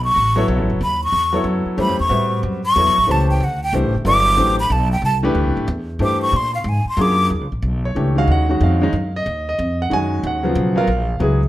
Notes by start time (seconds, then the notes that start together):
Already playing: B1
0.04 C#6
0.16 A1
0.36 F#3 B3 E4 A4 C#5
0.48 B1
0.59 A1
0.70 F#1
0.81 D#2 B5
1.04 C#6
1.12 E2
1.33 F#3 B3 E4 A4 C#5
1.44 F#2
1.66 muted upright bass stroke
1.77 G2 E3 A3 C#4 G4 C5 B5
1.89 F#2
2.00 E2 C#6
2.09 A2 G3 C4 F#4 B4 E5
2.43 F#2
2.66 C#6
2.76 E2 F#3 B3 E4 A4 C#5
2.87 B1
2.98 A1
3.07 C#2 E3 A3 C#4 G4 C5
3.11 A5
3.30 G5
3.40 D2 F#5
3.63 G5
3.73 C2 E3 A3 D4 G4 C5
3.84 A1
3.94 G1
4.05 G1 F#3 B3 E4 A4 D5 D6
4.37 A1 E3 A3 D4 G4 C5
4.60 B5
4.70 B1 A5
4.92 G5
5.02 C2 A5
5.23 E3 A3 D4 G4 B4
5.35 D2
5.45 C2
5.57 A1
5.68 E2
5.99 G2 E3 A3 D4 G4 C5
6.04 D6
6.22 C#6
6.33 A#2 C6
6.55 F5
6.64 G#2
6.69 G#5
6.85 C6, muted upright bass stroke
6.97 F#2 F#3 A#3 D4 F4 G#4
7.02 D6
7.30 D#2
7.41 C#2
7.52 A#1
7.62 B1
7.85 C#5
7.95 C#2 E3 A3 D4 G4
8.16 D#3 G#3 C#4 F#4 F5
8.27 D#2
8.32 F#5
8.49 D#3 G#3 C#4 F#4
8.61 F2 F5
8.81 D#3 G#3 C#4 D#4
8.93 F#2
9.16 D#5
9.26 D#2
9.49 D#5
9.59 F2
9.82 F#5
9.90 F#2 D#3 G#3 C#4 F#4 G#5
10.23 D#2 F#5
10.43 C#3 F3 F#3 B3
10.55 B1
10.76 F#3 B3 F4 A#4 F5
10.87 A#1
11.20 C#2 F#3 B3 E4 G#4